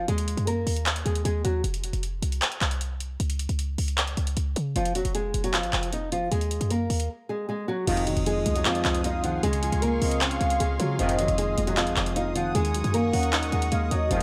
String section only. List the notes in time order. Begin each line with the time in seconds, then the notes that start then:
7.87 G#4 F5 C6 D#6
9.43 C#6
10.99 D#6
12.55 A#4 F#5 C#6
14.11 G#4 F5 C6